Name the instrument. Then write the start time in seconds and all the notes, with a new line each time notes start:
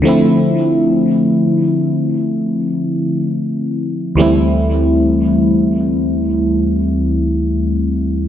fm electric piano
0.02 D3 F3 A3
0.07 C4 E4
4.15 D2 E3 G3 A3
4.20 C4 E4